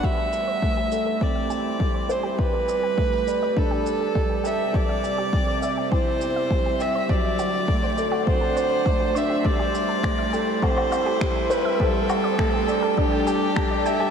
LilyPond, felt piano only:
\new Staff \with { instrumentName = "Felt piano" } { \time 4/4 \key a \dorian \tempo 4 = 102 g8 r8 a8 a'8 c'8 r8 g8 c''8 | g8 r8 a8 d''8 d'8 r8 g8 g''8 | g8 r8 c'8 e''8 e'8 r8 g8 g''8 | fis8 r8 a8 a'8 c'8 r8 a8 d'8 |
g8 r8 a8 a'8 c'8 r8 g8 c''8 | g8 r8 a8 d''8 d'8 r8 g8 g''8 | }